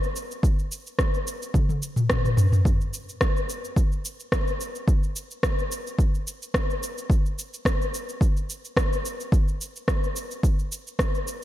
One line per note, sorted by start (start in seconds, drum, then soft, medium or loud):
0.03 cabasa soft
0.16 cabasa medium
0.31 cabasa soft
0.43 kick loud
0.43 cabasa soft
0.59 cabasa soft
0.72 cabasa medium
0.87 cabasa soft
0.99 kick loud
0.99 cross-stick medium
0.99 cabasa soft
1.14 cabasa soft
1.27 cabasa medium
1.42 cabasa soft
1.54 kick medium
1.54 high tom medium
1.54 cabasa soft
1.69 high tom soft
1.69 cabasa soft
1.83 cabasa medium
1.96 mid tom medium
1.96 cabasa soft
2.10 kick medium
2.10 cross-stick loud
2.10 mid tom medium
2.10 cabasa soft
2.25 mid tom medium
2.25 cabasa soft
2.37 mid tom medium
2.37 cabasa medium
2.52 mid tom medium
2.52 cabasa soft
2.65 kick loud
2.65 cabasa soft
2.81 cabasa soft
2.94 cabasa medium
3.09 cabasa soft
3.21 kick loud
3.21 cross-stick loud
3.21 cabasa soft
3.37 cabasa soft
3.49 cabasa medium
3.65 cabasa soft
3.76 kick medium
3.76 cabasa soft
3.92 cabasa soft
4.05 cabasa medium
4.20 cabasa soft
4.32 kick loud
4.32 cross-stick loud
4.32 cabasa soft
4.47 cabasa soft
4.61 cabasa medium
4.75 cabasa soft
4.88 kick loud
4.88 cabasa soft
5.03 cabasa soft
5.16 cabasa medium
5.31 cabasa soft
5.43 kick loud
5.43 cross-stick loud
5.43 cabasa soft
5.59 cabasa soft
5.72 cabasa medium
5.87 cabasa soft
5.99 kick loud
5.99 cabasa soft
6.15 cabasa soft
6.27 cabasa medium
6.42 cabasa soft
6.54 kick medium
6.54 cross-stick loud
6.54 cabasa soft
6.70 cabasa soft
6.83 cabasa medium
6.98 cabasa soft
7.10 kick loud
7.10 cabasa soft
7.26 cabasa soft
7.39 cabasa medium
7.54 cabasa soft
7.65 kick loud
7.65 cross-stick loud
7.65 cabasa soft
7.82 cabasa soft
7.94 cabasa medium
8.09 cabasa soft
8.21 kick loud
8.21 cabasa soft
8.37 cabasa soft
8.50 cabasa medium
8.65 cabasa soft
8.77 kick loud
8.77 cross-stick loud
8.77 cabasa soft
8.93 cabasa soft
9.05 cabasa medium
9.20 cabasa soft
9.32 kick loud
9.32 cabasa soft
9.48 cabasa soft
9.61 cabasa medium
9.76 cabasa soft
9.88 kick loud
9.88 cross-stick medium
9.88 cabasa soft
10.04 cabasa soft
10.16 cabasa medium
10.31 cabasa soft
10.43 kick medium
10.43 cabasa soft
10.59 cabasa soft
10.72 cabasa medium
10.87 cabasa soft
10.99 kick loud
10.99 cross-stick medium
10.99 cabasa soft
11.15 cabasa soft
11.28 cabasa medium